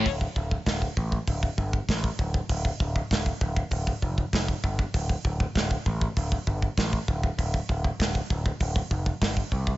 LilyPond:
<<
  \new Staff \with { instrumentName = "Picked electric bass" } { \clef bass \time 4/4 \key d \minor \tempo 4 = 98 d,,8 d,,8 d,,8 a,,8 d,,8 g,,8 a,,8 d,,8 | d,,8 d,,8 d,,8 d,,8 d,,8 f,,8 f,,8 g,,8 | d,,8 d,,8 d,,8 a,,8 d,,8 g,,8 a,,8 d,,8 | d,,8 d,,8 d,,8 d,,8 d,,8 f,,8 g,,8 c,8 | }
  \new DrumStaff \with { instrumentName = "Drums" } \drummode { \time 4/4 <hho bd>16 bd16 bd16 bd16 <hho bd sn>16 bd16 bd16 bd16 <hho bd>16 bd16 bd16 bd16 <hho bd sn>16 bd16 bd16 bd16 | <hho bd>16 bd16 bd16 bd16 <hho bd sn>16 bd16 bd16 bd16 <hho bd>16 bd16 bd16 bd16 <hho bd sn>16 bd16 bd16 bd16 | <hho bd>16 bd16 bd16 bd16 <hho bd sn>16 bd16 bd16 bd16 <hho bd>16 bd16 bd16 bd16 <hho bd sn>16 bd16 bd16 bd16 | <hho bd>16 bd16 bd16 bd16 <hho bd sn>16 bd16 bd16 bd16 <hho bd>16 bd16 bd16 bd16 <hho bd sn>16 bd16 bd16 bd16 | }
>>